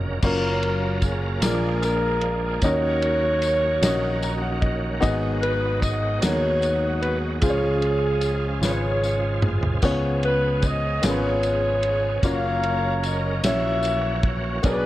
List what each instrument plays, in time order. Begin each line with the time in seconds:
Already playing: fingered electric bass F1, tonewheel organ C#3 F#3 A#3 C#4 A#4, upright piano A#3 C#4 F4 F#4 D5 D#5
0.22 fingered electric bass F#1, upright piano F#3 A#3 C#4 F4 C#5, tonewheel organ F#3 A#3 C#4 F4 A#4, saxophone section C#4 F4 A#4, kick, crash, tambourine
0.63 ride bell
1.02 saxophone section G#4, kick, ride bell, tambourine
1.41 fingered electric bass A#1, upright piano A#2 A#3 D4 F4 G#4 D5, tonewheel organ F3 G#3 D4 G#4, saxophone section D4 F4 A#4, snare, ride bell, tambourine
1.82 saxophone section D4 F4 A#4, ride bell, tambourine
2.21 ride bell
2.62 fingered electric bass D#2, tonewheel organ D#3 F#3 A#3 C#4 F#4, upright piano D#3 C#4 D#4 F#4 A#4 D#5, saxophone section F#4 A#4 C#5, kick, ride bell, tambourine
3.02 ride bell
3.42 ride bell, tambourine
3.82 fingered electric bass A#1, upright piano C#4 D#4 F#4 A#4 D#5, snare, ride bell, tambourine
4.22 upright piano A#5, ride bell, tambourine
4.42 upright piano F#5
4.62 upright piano D#5, kick, ride bell
5.01 fingered electric bass G#1, upright piano G#2 B3 D#4 F#4 G#4 D#5, tonewheel organ G#3 B3, kick, ride bell, tambourine
5.42 saxophone section B4, ride bell
5.81 saxophone section D#5, kick, ride bell, tambourine
6.21 fingered electric bass D#2, upright piano B3 D#4 F#4 G#4 A#4, saxophone section F#4 C#5, snare, ride bell, tambourine
6.62 ride bell, tambourine
7.01 saxophone section B4, ride bell
7.42 fingered electric bass C#2, upright piano C#3 F4 G#4 C5, tonewheel organ C#3 F3 F4 G#4, saxophone section C#4 F4 G#4, kick, ride bell, tambourine
7.50 upright piano C#5
7.82 ride bell
8.22 ride bell, tambourine
8.61 fingered electric bass G#1, upright piano F4 G#4 B4, saxophone section F4 G#4 C#5, snare, tambourine
8.71 upright piano C#5
9.04 tambourine
9.42 mid tom
9.63 floor tom
9.82 fingered electric bass C#2, upright piano C#3 B3 C#4 F4 G#4 C#5, tonewheel organ B3 C#4, kick, tambourine, splash
10.23 saxophone section B4, ride bell
10.62 saxophone section D#5, kick, ride bell, tambourine
11.02 fingered electric bass G#1, upright piano B3 C#4 F4 G#4 A#4, saxophone section F4 G#4 C#5, snare, ride bell, tambourine
11.10 upright piano B4
11.43 ride bell, tambourine
11.83 ride bell
12.21 fingered electric bass F#1, tonewheel organ C#3 F#3 A#3 C#4 A#4, upright piano A#3 C#4, kick, ride bell, tambourine
12.25 upright piano F4 F#4 C#5, saxophone section A#4 C#5 F5
12.64 ride bell
13.03 saxophone section D#5, ride bell, tambourine
13.43 fingered electric bass A#1, upright piano A#2 A#3 C#4 E4 F#4 C#5, tonewheel organ E3 F#3 C#4 F#4, saxophone section C#5 E5, snare, ride bell, tambourine
13.83 ride bell, tambourine
14.24 kick, ride bell
14.63 fingered electric bass B1, upright piano B2 B3 D4 F#4 G#4 C#5, tonewheel organ G#3 B3 D4 G#4, saxophone section D4 G#4 B4, kick, ride bell, tambourine
14.72 upright piano D5